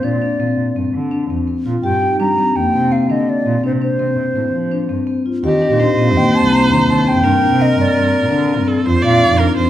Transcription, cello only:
0.04 0.18 A#2 medium
0.40 0.47 A#2 medium
0.58 0.65 A#2 medium
0.76 0.83 G2 medium
0.94 1.23 D3 medium
1.30 1.44 F2 medium
1.66 1.80 A#2 medium
1.84 1.98 G2 medium
2.20 2.27 G3 medium
2.38 2.45 G3 medium
2.55 2.63 F2 medium
2.74 3.03 C3 medium
3.09 3.24 D3 medium
3.46 3.60 A#2 medium
3.64 3.78 C3 medium
4.00 4.07 C3 medium
4.17 4.25 C3 medium
4.36 4.43 A2 medium
4.53 4.82 F3 medium
4.90 4.97 G2 medium
5.43 5.58 D#2 medium
5.70 5.92 A#2 medium
5.97 6.17 A#2 medium
6.16 6.30 D#2 medium
6.43 6.57 C2 medium
6.70 6.84 D#2 medium
6.87 7.02 D#2 medium
7.15 7.22 F2 medium
7.24 7.38 G2 medium
7.50 7.72 C3 medium
7.77 7.92 G2 medium
7.96 8.17 G2 medium
8.23 8.30 A#2 medium
8.32 8.61 D3 medium
8.59 8.73 G2 medium
8.86 9.00 F2 medium
9.04 9.18 A#2 medium
9.31 9.52 F2 medium
9.58 9.70 F2 medium

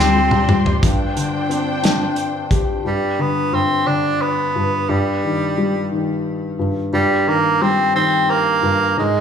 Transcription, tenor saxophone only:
0.00 0.59 C4 medium
2.87 3.22 G3 medium
3.21 3.56 B3 medium
3.54 3.89 C4 medium
3.87 4.23 D4 medium
4.22 4.91 B3 medium
4.89 5.91 G3 medium
6.94 7.30 G3 medium
7.28 7.64 A#3 medium
7.62 7.95 C4 medium
7.96 8.32 C4 medium
8.30 8.98 A#3 medium
8.99 9.21 G#3 medium

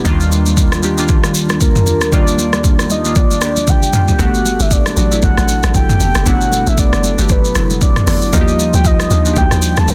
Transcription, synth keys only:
0.05 0.69 D#3 loud
0.05 0.69 G3 loud
0.05 0.69 A#3 loud
0.05 0.70 D4 loud
0.05 0.70 F4 loud
0.82 0.95 D#3 medium
0.82 0.95 G3 medium
0.82 0.95 A#3 medium
0.82 0.96 D4 medium
0.82 0.96 G4 medium
0.97 1.80 D#3 medium
0.97 1.80 G3 medium
0.97 1.80 A#3 medium
0.97 1.80 D4 medium
0.97 1.81 F4 loud
2.12 2.85 D#3 loud
2.12 2.86 G3 medium
2.12 2.86 A#3 medium
2.12 2.86 D4 medium
2.12 2.86 F4 loud
3.04 3.35 D#3 medium
3.04 3.35 G3 medium
3.04 3.35 A#3 medium
3.04 3.36 D4 medium
3.04 3.36 F4 medium
3.41 3.84 D#3 medium
3.41 3.85 G3 medium
3.41 3.85 A#3 medium
3.41 3.85 D4 medium
3.41 3.86 G4 medium
3.93 4.15 D#3 medium
3.93 4.15 G3 medium
3.93 4.15 A#3 medium
3.93 4.15 D4 medium
3.93 4.16 F4 medium
4.19 4.83 A3 medium
4.19 4.83 B3 medium
4.19 4.83 D4 medium
4.19 4.83 F#4 loud
4.19 4.84 G4 loud
4.96 5.08 F#3 medium
4.96 5.09 A3 medium
4.96 5.09 B3 medium
4.96 5.09 D4 medium
4.96 5.10 F#4 medium
5.11 5.93 F#3 medium
5.11 5.94 A3 medium
5.11 5.94 B3 medium
5.11 5.94 D4 medium
5.11 5.95 E4 medium
6.25 6.99 F#3 loud
6.25 6.99 A3 medium
6.25 7.00 B3 medium
6.25 7.00 D4 medium
6.25 7.00 E4 loud
7.18 7.49 A3 medium
7.18 7.49 B3 medium
7.18 7.49 D4 medium
7.18 7.49 F#4 medium
7.18 7.50 G4 medium
7.55 7.98 F#3 medium
7.55 7.99 A3 medium
7.55 7.99 B3 medium
7.55 7.99 D4 medium
7.55 7.99 E4 medium
8.07 8.28 F#3 medium
8.07 8.29 A3 medium
8.07 8.29 B3 medium
8.07 8.29 D4 medium
8.07 8.29 E4 medium
8.32 8.96 F3 loud
8.32 8.97 A#3 medium
8.32 8.97 D#4 medium
8.32 8.97 F4 medium
8.32 8.41 F#4 medium
8.41 9.01 G4 loud
9.10 9.22 F3 medium
9.10 9.23 A#3 medium
9.10 9.23 D4 medium
9.10 9.23 D#4 medium
9.10 9.23 G4 medium
9.25 9.95 F3 medium
9.25 9.95 A#3 medium
9.25 9.95 D4 medium
9.25 9.95 D#4 medium
9.25 9.32 F#4 medium
9.33 9.95 G4 medium

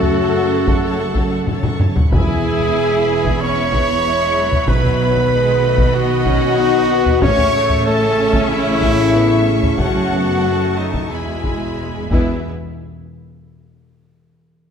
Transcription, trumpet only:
0.00 1.44 F#4 medium
2.12 3.42 G#4 medium
3.41 4.70 C#5 loud
4.68 5.94 B4 medium
5.94 7.19 F#4 loud
7.22 7.85 C#5 loud
7.86 8.50 A4 medium
8.49 9.50 E4 loud
9.79 10.79 F#4 medium
10.78 11.12 D#4 medium
11.11 12.09 E4 soft
12.10 12.40 E4 soft

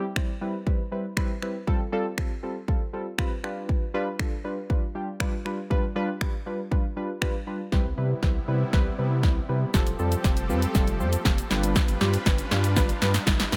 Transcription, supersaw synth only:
7.72 9.72 C3 medium
7.72 9.72 G3 medium
7.72 9.72 B3 medium
7.72 9.72 E4 medium
9.74 11.49 F3 medium
9.74 11.49 C4 medium
9.74 11.49 G4 medium
9.74 11.49 A4 medium
11.50 13.57 G3 medium
11.50 13.57 D4 medium
11.50 13.57 F4 medium
11.50 13.57 B4 medium

